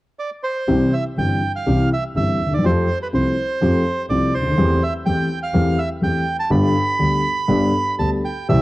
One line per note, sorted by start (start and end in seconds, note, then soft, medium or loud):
0.20 0.30 D5 soft
0.43 0.94 C5 medium
0.68 0.89 C2 medium
0.68 0.89 C3 medium
0.68 0.89 E3 medium
0.68 0.89 G3 medium
0.68 0.89 C4 soft
0.68 0.89 G4 medium
0.93 1.04 E5 medium
1.17 1.38 G1 soft
1.17 1.38 G2 soft
1.17 1.38 E3 soft
1.17 1.38 G3 soft
1.17 1.38 C4 soft
1.17 1.38 G4 soft
1.17 1.52 G5 medium
1.56 1.89 F5 medium
1.66 1.87 C2 medium
1.66 1.87 C3 medium
1.66 1.87 E3 medium
1.66 1.87 G3 soft
1.66 1.87 C4 soft
1.66 1.87 G4 medium
1.93 2.04 E5 medium
2.15 2.36 G1 soft
2.15 2.36 G2 soft
2.15 2.36 E3 soft
2.15 2.36 G3 soft
2.15 2.36 C4 soft
2.15 2.36 G4 soft
2.15 2.54 E5 medium
2.40 2.64 D#2 soft
2.46 2.52 D2 soft
2.52 2.58 D#2 soft
2.52 2.65 D5 medium
2.58 2.64 E2 soft
2.64 2.85 F2 medium
2.64 2.85 F3 medium
2.64 2.85 A3 soft
2.64 2.85 C4 medium
2.64 2.85 G4 medium
2.64 2.98 C5 medium
3.03 3.07 B4 medium
3.13 3.33 C2 soft
3.13 3.33 C3 soft
3.13 3.33 F3 soft
3.13 3.33 A3 soft
3.13 3.33 C4 soft
3.13 3.33 G4 soft
3.13 4.06 C5 medium
3.61 3.81 F2 medium
3.61 3.81 F3 medium
3.61 3.81 A3 medium
3.61 3.81 C4 medium
3.61 3.82 G4 medium
4.10 4.29 C2 medium
4.10 4.30 C2 soft
4.10 4.30 C3 soft
4.10 4.30 F3 soft
4.10 4.30 A3 soft
4.10 4.30 C4 soft
4.10 4.30 G4 soft
4.10 4.34 D5 medium
4.33 4.57 D2 soft
4.33 4.83 C5 medium
4.41 4.46 C#2 soft
4.47 4.52 D2 soft
4.52 4.58 D#2 medium
4.58 4.78 E2 medium
4.58 4.78 E3 medium
4.58 4.78 A3 medium
4.58 4.78 C4 medium
4.58 4.78 G4 medium
4.83 4.94 E5 medium
5.06 5.26 E2 soft
5.06 5.26 E3 soft
5.06 5.26 A3 soft
5.06 5.26 C4 soft
5.06 5.26 G4 soft
5.06 5.39 G5 medium
5.43 5.80 F5 medium
5.54 5.74 E2 medium
5.54 5.75 E2 medium
5.54 5.75 E3 medium
5.54 5.74 A3 medium
5.54 5.74 C4 medium
5.54 5.75 G4 medium
5.79 5.89 E5 medium
6.01 6.22 E2 soft
6.01 6.23 E2 soft
6.01 6.22 E3 soft
6.01 6.23 A3 soft
6.01 6.23 C4 soft
6.01 6.23 G4 soft
6.01 6.37 G5 medium
6.40 6.50 A5 medium
6.50 6.71 G1 medium
6.50 6.71 G2 medium
6.50 6.71 D3 medium
6.50 6.71 G3 medium
6.50 6.71 B3 medium
6.50 6.71 G4 medium
6.50 7.95 B5 medium
6.99 7.20 D2 soft
6.99 7.21 D2 soft
6.99 7.20 D3 soft
6.99 7.20 G3 soft
6.99 7.20 B3 soft
6.99 7.20 G4 soft
7.48 7.70 G1 medium
7.48 7.70 G2 medium
7.48 7.69 D3 medium
7.48 7.70 G3 medium
7.48 7.70 B3 medium
7.48 7.70 G4 medium
7.98 8.20 D2 soft
7.98 8.21 D2 medium
7.98 8.20 D3 soft
7.98 8.20 G3 soft
7.98 8.20 B3 soft
7.98 8.20 G4 soft
7.98 8.10 A5 medium
8.25 8.48 G5 medium
8.49 8.62 C2 medium
8.49 8.62 C3 medium
8.49 8.62 E3 medium
8.49 8.62 G3 medium
8.49 8.62 C4 medium
8.49 8.62 G4 medium
8.49 8.62 E5 medium